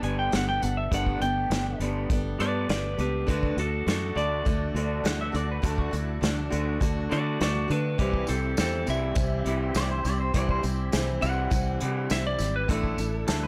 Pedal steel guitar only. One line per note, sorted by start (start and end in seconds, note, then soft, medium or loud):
5.07 5.20 F#5 medium
5.21 5.34 E5 medium
5.36 5.49 D5 medium
5.51 5.64 B4 medium
5.64 5.78 A4 medium
5.79 5.93 F#4 medium
5.94 6.22 E4 medium
6.22 6.51 D4 medium
9.77 9.90 D5 medium
9.91 10.05 C5 medium
10.06 10.20 D5 medium
10.20 10.34 C5 medium
10.35 10.49 D5 medium
10.51 10.64 C5 medium
10.64 11.07 G4 medium
13.28 13.42 A4 medium
13.43 13.47 B4 medium